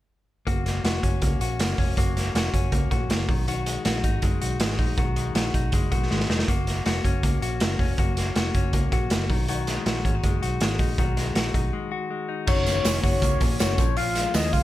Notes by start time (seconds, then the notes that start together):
0.47 F#1 A#3 F#4, kick, closed hi-hat
0.66 A#3, snare, closed hi-hat
0.84 F1 F#4, snare, closed hi-hat
1.03 F#1 C#4, kick, closed hi-hat
1.22 C#2 A#3, kick, closed hi-hat
1.40 A#1 F#4, closed hi-hat
1.59 F#1 A#3, snare, closed hi-hat
1.78 F1 C#4, kick, open hi-hat
1.97 F#1 A#3 F#4, kick, closed hi-hat
2.16 A#3, snare, closed hi-hat
2.35 F1 F#4, snare, closed hi-hat
2.54 F#1 C#4, kick, closed hi-hat
2.72 C#2 A#3, kick, closed hi-hat
2.91 A#1 F#4, kick, closed hi-hat
3.09 F#1 A#3, snare, closed hi-hat
3.28 B1 D#3, kick, open hi-hat
3.48 D#3 F#4, closed hi-hat
3.66 G#3, closed hi-hat
3.85 A#1 F#4, snare, closed hi-hat
4.04 G#1 D#4, kick, closed hi-hat
4.22 F#1 G#3, kick, closed hi-hat
4.41 B1 F#4, closed hi-hat
4.60 G#1 G#3, snare, closed hi-hat
4.78 A#1 D#4, kick, open hi-hat
4.97 B1 D#3 F#4, kick, closed hi-hat
5.16 G#3, closed hi-hat
5.35 A#1 F#4, snare, closed hi-hat
5.54 B1 D#4, kick, closed hi-hat
5.72 F#1 G#3, kick, closed hi-hat
5.92 B1 F#4, kick, closed hi-hat
6.11 G#1 G#3, snare
6.20 snare
6.30 F1 D#4, snare
6.39 snare
6.48 F#1 A#3 F#4, kick, closed hi-hat
6.67 A#3, snare, closed hi-hat
6.86 F1 F#4, snare, closed hi-hat
7.05 F#1 C#4, kick, closed hi-hat
7.23 C#2 A#3, kick, closed hi-hat
7.42 A#1 F#4, closed hi-hat
7.60 F#1 A#3, snare, closed hi-hat
7.79 F1 C#4, kick, open hi-hat
7.98 F#1 A#3 F#4, kick, closed hi-hat
8.17 A#3, snare, closed hi-hat
8.36 F1 F#4, snare, closed hi-hat
8.55 F#1 C#4, kick, closed hi-hat
8.73 C#2 A#3, kick, closed hi-hat
8.92 A#1 F#4, kick, closed hi-hat
9.10 F#1 A#3, snare, closed hi-hat
9.29 B1 D#3, kick, open hi-hat
9.48 D#3 F#4, closed hi-hat
9.67 G#3, snare, closed hi-hat
9.86 A#1 F#4, snare, closed hi-hat
10.05 G#1 C#4, kick, closed hi-hat
10.15 D#4
10.23 F#1 G#3, kick, closed hi-hat
10.42 B1 F#4, closed hi-hat
10.61 G#1 G#3, snare, closed hi-hat
10.79 A#1 D#4, kick, open hi-hat
10.98 B1 D#3 F#4, kick, closed hi-hat
11.17 G#3, snare, closed hi-hat
11.35 A#1 F#4, snare, closed hi-hat
11.54 B1 D#4, kick, closed hi-hat
11.73 G#3
11.92 F#4
12.10 G#3
12.29 D#4
12.47 F#1 D#3 F#4 C#5, kick, crash, tambourine
12.66 A#3, snare, hi-hat pedal, open hi-hat, tambourine
12.85 F1 C#4, snare, hi-hat pedal, open hi-hat, tambourine
13.03 F#1 F#4 C#5, kick, hi-hat pedal, open hi-hat, tambourine
13.22 C#2 A#3, kick, hi-hat pedal, open hi-hat, tambourine
13.40 A#1 C#4, kick, hi-hat pedal, open hi-hat, tambourine
13.59 F#1 F#4 C#5, snare, hi-hat pedal, open hi-hat, tambourine
13.78 A#1 F3, kick, hi-hat pedal, open hi-hat, tambourine
13.97 F3 F4 F5, hi-hat pedal, open hi-hat
14.15 G#3, snare, hi-hat pedal, open hi-hat, tambourine
14.34 D#2 B3 D#5, snare, hi-hat pedal, open hi-hat, tambourine
14.44 C#4
14.53 C#2 F4 F5, kick, hi-hat pedal, open hi-hat, tambourine